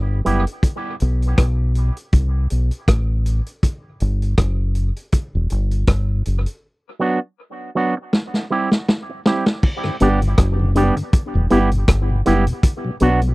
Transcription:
Already playing: fingered electric bass G1
0.25 fingered electric bass F#1, clean electric guitar G3 B3 E4 G4, closed hi-hat
0.47 closed hi-hat
0.63 kick, closed hi-hat
1.00 fingered electric bass B1, closed hi-hat
1.22 closed hi-hat
1.38 fingered electric bass B1, kick, cross-stick, closed hi-hat
1.75 closed hi-hat
1.97 closed hi-hat
2.12 fingered electric bass C2, kick, closed hi-hat
2.50 fingered electric bass B1, closed hi-hat
2.71 closed hi-hat
2.88 fingered electric bass A1, kick, cross-stick, closed hi-hat
3.26 closed hi-hat
3.46 closed hi-hat
3.63 kick, closed hi-hat
4.00 fingered electric bass G1, closed hi-hat
4.22 closed hi-hat
4.38 fingered electric bass F#1, kick, cross-stick, closed hi-hat
4.75 closed hi-hat
4.96 closed hi-hat
5.12 kick, closed hi-hat
5.35 fingered electric bass E1
5.50 fingered electric bass G1, closed hi-hat
5.71 closed hi-hat
5.87 fingered electric bass G1, kick, cross-stick, closed hi-hat
6.25 fingered electric bass F#1, closed hi-hat
6.46 closed hi-hat
7.00 clean electric guitar F#3 B3 D4 F#4
7.75 clean electric guitar F#3 B3 D4 F#4
8.13 snare
8.34 snare
8.50 clean electric guitar G3 C4 E4 G4
8.71 snare
8.88 snare
9.09 muted clean electric guitar stroke
9.26 clean electric guitar G3 C4 E4 G4, snare
9.46 snare
9.63 kick, crash
9.84 tonewheel organ G2 D3, cross-stick
10.00 fingered electric bass G1, clean electric guitar G3 B3 D4 G4, tonewheel organ B3 D4 G4, closed hi-hat
10.22 tonewheel organ G2 D3, closed hi-hat
10.38 fingered electric bass F#1, kick, cross-stick, closed hi-hat
10.60 tonewheel organ G2 D3
10.75 clean electric guitar G3 B3 D4 G4, tonewheel organ B3 D4 G4, closed hi-hat
10.96 tonewheel organ G2 D3, closed hi-hat
11.13 kick, closed hi-hat
11.34 fingered electric bass E1, tonewheel organ E2 B2
11.50 fingered electric bass G1, clean electric guitar G3 B3 E4 G4, tonewheel organ B3 E4 G4, closed hi-hat
11.71 tonewheel organ E2 B2, closed hi-hat
11.88 fingered electric bass G1, kick, cross-stick, closed hi-hat
12.10 tonewheel organ E2 B2
12.26 fingered electric bass F#1, clean electric guitar G3 B3 E4 G4, tonewheel organ B3 E4 G4, closed hi-hat
12.47 tonewheel organ E2 B2, closed hi-hat
12.63 kick, closed hi-hat
12.85 tonewheel organ B2 F#3
13.00 fingered electric bass B1, clean electric guitar F#3 B3 D4 F#4, tonewheel organ B3 D4 F#4, closed hi-hat
13.21 tonewheel organ B2 F#3, closed hi-hat

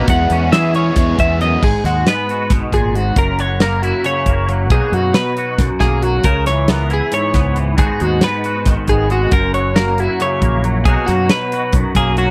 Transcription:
Already playing: clean electric guitar F#3 D#4 F#4
0.08 clean electric guitar E2 F#5, fingered electric bass E2, overdriven electric guitar E3 G#3 B3 E4, kick, closed hi-hat
0.30 fingered electric bass E2, clean electric guitar C#4, closed hi-hat
0.52 fingered electric bass E3, overdriven electric guitar E3 G#3 B3 E4, clean electric guitar E3 G#4 E5, snare, closed hi-hat
0.74 overdriven electric guitar G#3 B3 E4, clean electric guitar C#4 C#5, closed hi-hat
0.96 fingered electric bass E2, overdriven electric guitar E3 G#3 B3 E4, kick, snare, closed hi-hat
1.17 clean electric guitar E2 E5, fingered electric bass E2, overdriven electric guitar G#3 B3 E4, kick, closed hi-hat
1.39 clean electric guitar F#2 D#5, overdriven electric guitar E3 G#3 B3 E4, closed hi-hat
1.62 fingered electric bass G#1, clean electric guitar G#2 G#4, kick, crash
1.84 fingered electric bass D#2, clean electric guitar G#3 F#4, snare, closed hi-hat
2.07 clean electric guitar B3 B4, snare, closed hi-hat
2.29 clean electric guitar F#4, closed hi-hat
2.50 fingered electric bass G#1, clean electric guitar B2, kick, snare, closed hi-hat
2.72 fingered electric bass G#1, clean electric guitar A#2 G#4, kick, closed hi-hat
2.95 clean electric guitar G#2 F#4, closed hi-hat
3.16 fingered electric bass F#1, clean electric guitar F#2 A#4, kick, closed hi-hat
3.39 clean electric guitar F#3 C#5, closed hi-hat
3.60 clean electric guitar A#3 A#4, snare, closed hi-hat
3.82 clean electric guitar E4 F#4, closed hi-hat
4.04 clean electric guitar C#3 C#5, closed hi-hat
4.26 fingered electric bass F#1, clean electric guitar A#3, kick, closed hi-hat
4.49 clean electric guitar F#3, closed hi-hat
4.70 fingered electric bass B1, clean electric guitar B2 F#3 A#3 D#4 G#4, kick, closed hi-hat
4.75 clean electric guitar F#4
4.92 fingered electric bass F#2, clean electric guitar F#3 F#4, closed hi-hat
5.14 clean electric guitar B4, snare, closed hi-hat
5.37 clean electric guitar F#4, closed hi-hat
5.58 fingered electric bass B1, clean electric guitar F#2, kick, snare, closed hi-hat
5.80 fingered electric bass B1, clean electric guitar A#3 G#4, kick, snare, closed hi-hat
6.03 clean electric guitar F#3 F#4, closed hi-hat
6.24 fingered electric bass C#2, clean electric guitar C#3 A#4, kick, closed hi-hat
6.46 clean electric guitar E3 C#5, snare, closed hi-hat
6.68 clean electric guitar B3 A#4, snare, closed hi-hat
6.90 clean electric guitar E4 G#4, closed hi-hat
7.12 clean electric guitar G#2 C#5, closed hi-hat
7.34 fingered electric bass C#2, clean electric guitar B3, kick, snare, closed hi-hat
7.56 clean electric guitar E3, closed hi-hat
7.77 fingered electric bass G#1, clean electric guitar G#2 G#3 B3 D#4 F#4 G#4, kick, closed hi-hat
8.00 fingered electric bass D#2, clean electric guitar G#3 F#4, closed hi-hat
8.21 clean electric guitar B3 B4, snare, closed hi-hat
8.44 clean electric guitar F#4, closed hi-hat
8.66 fingered electric bass G#1, clean electric guitar D#3, kick, snare, closed hi-hat
8.88 fingered electric bass G#1, clean electric guitar B3 G#4, kick, closed hi-hat
9.10 clean electric guitar G#3 F#4, closed hi-hat
9.31 fingered electric bass F#1, clean electric guitar F#2 A#4, kick, closed hi-hat
9.54 clean electric guitar F#3 C#5, closed hi-hat
9.76 clean electric guitar A#3 A#4, snare, closed hi-hat
9.98 clean electric guitar E4 F#4, closed hi-hat
10.19 clean electric guitar C#3 C#5, closed hi-hat
10.42 fingered electric bass A#1, clean electric guitar A#3, kick, closed hi-hat
10.64 clean electric guitar F#3, closed hi-hat
10.85 fingered electric bass B1, clean electric guitar B2 F#3 A#3 D#4 G#4, kick, closed hi-hat
10.90 clean electric guitar F#4
11.06 fingered electric bass F#2, clean electric guitar F#3 F#4, snare, closed hi-hat
11.29 clean electric guitar B4, snare, closed hi-hat
11.52 clean electric guitar F#4, closed hi-hat
11.73 fingered electric bass B1, clean electric guitar F#2, kick, closed hi-hat
11.95 fingered electric bass B1, clean electric guitar A#3 G#4, kick, closed hi-hat
12.17 clean electric guitar F#3 F#4, closed hi-hat

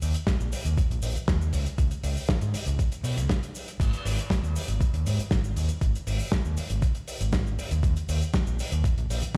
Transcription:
0.02 fingered electric bass D#2, open hi-hat, cabasa
0.14 closed hi-hat, cabasa
0.27 kick, snare, closed hi-hat, cabasa
0.40 fingered electric bass A#1, cabasa
0.52 open hi-hat, cabasa
0.65 fingered electric bass D#2, closed hi-hat, cabasa
0.78 muted fingered electric bass stroke, kick, closed hi-hat, cabasa
0.90 fingered electric bass A#1, closed hi-hat
1.02 fingered electric bass A#1, open hi-hat, cabasa
1.16 muted fingered electric bass stroke, closed hi-hat, cabasa
1.28 fingered electric bass D#2, kick, snare, closed hi-hat, cabasa
1.41 cabasa
1.53 fingered electric bass C#2, open hi-hat, cabasa
1.66 closed hi-hat, cabasa
1.78 fingered electric bass C#2, kick, closed hi-hat, cabasa
1.91 closed hi-hat, cabasa
2.03 fingered electric bass C#2, open hi-hat, cabasa
2.16 open hi-hat, cabasa
2.28 kick, snare, closed hi-hat, cabasa
2.41 fingered electric bass G#2, closed hi-hat, cabasa
2.54 muted fingered electric bass stroke, open hi-hat, cabasa
2.66 fingered electric bass C#2, closed hi-hat, cabasa
2.79 kick, closed hi-hat, cabasa
2.92 closed hi-hat, cabasa
3.04 fingered electric bass B2, open hi-hat, cabasa
3.16 fingered electric bass C#2, closed hi-hat, cabasa
3.29 kick, snare, closed hi-hat, cabasa
3.43 closed hi-hat, cabasa
3.55 open hi-hat, cabasa
3.68 closed hi-hat, cabasa
3.80 fingered electric bass G#1, kick, closed hi-hat, crash, cabasa
3.93 closed hi-hat, cabasa
4.05 fingered electric bass G#1, open hi-hat, cabasa
4.18 closed hi-hat, cabasa
4.30 kick, snare, closed hi-hat, cabasa
4.43 fingered electric bass D#2, cabasa
4.56 open hi-hat, cabasa
4.68 fingered electric bass G#1, closed hi-hat, cabasa
4.81 muted fingered electric bass stroke, kick, closed hi-hat, cabasa
4.94 fingered electric bass D#2, closed hi-hat
5.06 fingered electric bass G#2, open hi-hat, cabasa
5.19 muted fingered electric bass stroke, closed hi-hat, cabasa
5.31 fingered electric bass G#1, kick, snare, closed hi-hat, cabasa
5.44 cabasa
5.56 fingered electric bass D#2, open hi-hat, cabasa
5.69 closed hi-hat, cabasa
5.81 fingered electric bass G#1, kick, closed hi-hat, cabasa
5.95 closed hi-hat, cabasa
6.07 fingered electric bass G#1, open hi-hat, cabasa
6.19 open hi-hat, cabasa
6.32 kick, snare, cabasa
6.45 fingered electric bass D#2, cabasa
6.57 muted fingered electric bass stroke, open hi-hat, cabasa
6.70 fingered electric bass G#1, closed hi-hat, cabasa
6.82 kick, closed hi-hat, cabasa
6.95 closed hi-hat
7.08 open hi-hat, cabasa
7.20 fingered electric bass G#1, closed hi-hat, cabasa
7.33 kick, snare, closed hi-hat, cabasa
7.47 cabasa
7.58 muted fingered electric bass stroke, open hi-hat, cabasa
7.71 fingered electric bass D#2, closed hi-hat, cabasa
7.83 fingered electric bass D#2, kick, closed hi-hat, cabasa
7.96 closed hi-hat, cabasa
8.09 fingered electric bass D#2, open hi-hat, cabasa
8.21 closed hi-hat, cabasa
8.34 kick, snare, closed hi-hat, cabasa
8.47 fingered electric bass A#1, cabasa
8.59 open hi-hat, cabasa
8.72 fingered electric bass D#2, closed hi-hat, cabasa
8.84 muted fingered electric bass stroke, kick, closed hi-hat, cabasa
8.97 fingered electric bass A#1, closed hi-hat
9.10 fingered electric bass A#1, open hi-hat, cabasa
9.22 muted fingered electric bass stroke, closed hi-hat, cabasa

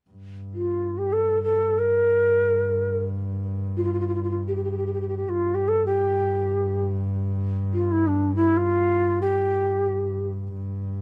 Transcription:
0.10 double bass G2
0.54 shakuhachi F4
0.97 shakuhachi G4
1.12 shakuhachi A4
1.43 shakuhachi A4
1.78 shakuhachi A#4
3.76 shakuhachi F4
3.83 shakuhachi F4
3.92 shakuhachi F4
4.00 shakuhachi F4
4.07 shakuhachi F4
4.14 shakuhachi F4
4.23 shakuhachi F4
4.30 shakuhachi F4
4.47 shakuhachi G4
4.56 shakuhachi G4
4.64 shakuhachi G4
4.71 shakuhachi G4
4.77 shakuhachi G4
4.86 shakuhachi G4
4.93 shakuhachi G4
5.01 shakuhachi G4
5.08 shakuhachi G4
5.16 shakuhachi G4
5.29 double bass G2, shakuhachi F4
5.54 shakuhachi G4
5.68 shakuhachi A4
5.86 shakuhachi G4
7.73 shakuhachi F4
7.91 shakuhachi E4
8.06 shakuhachi D4
8.35 shakuhachi E4
8.56 shakuhachi F4
9.21 shakuhachi G4
10.54 double bass G2

